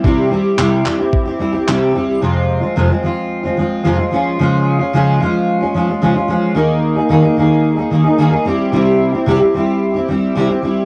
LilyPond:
<<
  \new Staff \with { instrumentName = "Steel-string acoustic guitar" } { \time 4/4 \key f \minor \tempo 4 = 111 <c g c' e' g'>8 <g c' e' g'>8 <c g c' e' g'>8 <g c' e' g'>16 <c' e' g'>8 <c' e' g'>16 <g c' e' g'>16 <c' e' g'>16 <c g c' e' g'>8 <g c' e' g'>8 | <f, c f aes c' f'>8. <f aes c' f'>16 <f, c f aes c' f'>16 <f aes c' f'>16 <f aes c' f'>8. <f aes c' f'>16 <f aes c' f'>8 <f, c f aes c' f'>16 <f aes c' f'>16 <f aes des' f'>8 | <des f aes des' f'>8. <aes des' f'>16 <des f aes des' f'>8 <f aes des' f'>8. <aes des' f'>16 <f aes des' f'>16 <aes des' f'>16 <des f aes des' f'>16 <aes des' f'>16 <f aes des' f'>8 | <ees bes ees' aes'>8. <bes ees' aes'>16 <ees bes ees' aes'>16 <bes ees' aes'>16 <ees bes ees' aes'>8. <bes ees' aes'>16 <ees bes ees' aes'>16 <bes ees' aes'>16 <ees bes ees' aes'>16 <bes ees' aes'>16 <g c' e' g'>8 |
<c g c' e' g'>8. <c' e' g'>16 <c g c' e' g'>16 <c' e' g'>16 <g c' e' g'>8. <c' e' g'>16 <g c' e' g'>8 <c g c' e' g'>16 <c' e' g'>16 <g c' e' g'>8 | }
  \new DrumStaff \with { instrumentName = "Drums" } \drummode { \time 4/4 bd4 hc8 hc8 bd4 hc4 | r4 r4 r4 r4 | r4 r4 r4 r4 | r4 r4 r4 r4 |
r4 r4 r4 r4 | }
>>